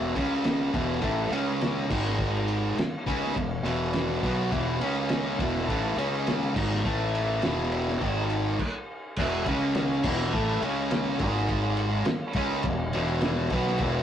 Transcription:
Already playing: E1 E2 B2 E3
0.15 C#2 C#3 G#3 C#4, kick, ride
0.44 snare, ride
0.74 E1 E2 B2 E3, kick, ride
1.02 A1 A2 E3 A3, kick, ride
1.30 C#2 C#3 G#3 C#4, ride
1.61 snare, ride
1.90 G#1 G#2 D#3 G#3, kick, crash
2.06 snare
2.19 kick
2.48 ride
2.77 muted fingered electric bass stroke, muted distorted electric guitar stroke, snare, ride
3.06 C#2 C#3 G#3 C#4, kick, ride
3.24 snare
3.35 E1 E2 B2, kick, ride
3.62 E1 E2 B2 E3, ride
3.93 snare, ride
4.22 B1 B2 F#3 B3, kick, ride
4.50 E1 E2 B2 E3, kick, ride
4.80 C#2 C#3 G#3 C#4, ride
5.09 snare, ride
5.38 E1 E2 B2 E3, kick, ride
5.55 snare
5.67 A1 A2 E3 A3, kick, ride
5.96 C#2 C#3 G#3 C#4, ride
6.27 snare, ride
6.54 G#1 G#2 D#3 G#3, kick, crash
6.74 snare
6.84 A1 A2 E3 A3, kick
7.15 ride
7.42 E1 E2 B2 E3, snare, ride
7.72 ride
7.88 snare
8.00 G#1 G#2 D#3 G#3, kick, ride
8.30 ride
8.59 kick, crash
9.16 E1 E2 B2 E3, kick, crash
9.45 C#2 C#3 G#3 C#4, kick, ride
9.75 snare, ride
10.03 E1 E2 B2 E3, kick, crash
10.19 snare
10.33 A1 A2 E3 A3, kick
10.62 C#2 C#3 G#3 C#4, ride
10.91 snare, ride
11.19 G#1 G#2 D#3 G#3, kick, ride
11.36 snare
11.48 kick, ride
11.77 ride
12.05 muted distorted electric guitar stroke, muted fingered electric bass stroke, snare, ride
12.33 C#2 C#3 G#3 C#4, kick, ride
12.63 E1 E2, kick, ride
12.67 B2
12.93 E1 E2 B2 E3, ride
13.21 snare, ride
13.50 B1 B2 F#3 B3, kick, ride
13.66 snare
13.78 E1 E2 B2, kick, ride
13.82 E3

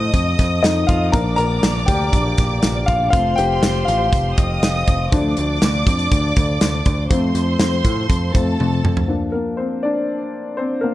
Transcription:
Already playing: F3 A3 C4 D#5 D#6
0.14 F2, kick, closed hi-hat
0.39 F2, kick, snare, closed hi-hat
0.63 F2 D#4 D#5, snare, closed hi-hat
0.87 F2 F4 F5, kick, closed hi-hat
1.12 A#1 F3 A#3 D4 A#4 D5 A#5 D6, kick, closed hi-hat
1.36 A#1 A#4 A#5, closed hi-hat
1.63 A#1, snare, closed hi-hat
1.86 D2 G4 G5, kick, closed hi-hat
2.13 A#1, kick, closed hi-hat
2.38 A#1, kick, snare, closed hi-hat
2.63 A#1, snare, closed hi-hat
2.86 A#1 F4 F5, kick, closed hi-hat
3.10 F1 F3 A3 C4 F4 C5 F5 C6, kick, closed hi-hat
3.36 F1 G4 G5, closed hi-hat
3.63 F1, snare, closed hi-hat
3.85 A1 F4 F5, closed hi-hat
4.12 F1, kick, closed hi-hat
4.37 F1 D#5 D#6, kick, closed hi-hat
4.63 F1, snare, closed hi-hat
4.87 F1, kick, closed hi-hat
5.12 D2 F3 A3 D4 D5 D6, kick, closed hi-hat
5.37 D2, closed hi-hat
5.62 D2, snare, closed hi-hat
5.86 F2, kick, closed hi-hat
5.99 closed hi-hat
6.12 D2, kick, closed hi-hat
6.36 D2, kick, closed hi-hat
6.61 D2, snare, closed hi-hat
6.85 D2, kick, closed hi-hat
7.10 F2 F3 A3 C4 C5 C6, kick, closed hi-hat
7.35 F2, closed hi-hat
7.59 F2, snare, closed hi-hat
7.85 A2, kick, closed hi-hat
8.10 F2, kick, closed hi-hat
8.33 F2 F3 A3 C4 A4 A5, kick, closed hi-hat
8.60 F2, high tom
8.84 F2, mid tom
8.97 floor tom
9.08 F3 A#3 D4
9.32 A#3 A#4
9.57 C4 C5
9.83 D4 D5
10.57 C4 C5
10.81 A#3 A#4

